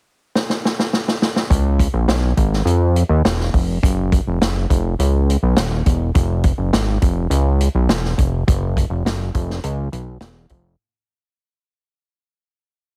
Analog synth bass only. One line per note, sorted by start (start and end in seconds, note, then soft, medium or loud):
1.50 1.88 C#2 loud
1.94 2.06 A#1 medium
2.08 2.33 B1 loud
2.37 2.62 G#1 medium
2.65 3.03 F2 medium
3.09 3.22 D#2 medium
3.25 3.50 E1 loud
3.53 3.79 F1 medium
3.83 4.20 F#1 loud
4.28 4.40 F1 medium
4.41 4.66 F#1 loud
4.70 4.95 F1 medium
4.99 5.37 C#2 medium
5.43 5.55 B1 medium
5.58 5.82 D#1 medium
5.86 6.11 E1 medium
6.15 6.53 F1 loud
6.58 6.71 F#1 medium
6.73 6.98 G#1 loud
7.02 7.27 F1 medium
7.30 7.68 C#2 medium
7.75 7.88 B1 medium
7.89 8.14 E1 medium
8.18 8.44 F1 medium
8.48 8.85 F#1 loud
8.90 9.03 F1 medium
9.05 9.31 F#1 medium
9.34 9.60 F1 medium
9.64 9.89 C#2 medium
9.93 10.18 B1 medium
10.21 10.46 E1 medium
10.50 10.76 F1 medium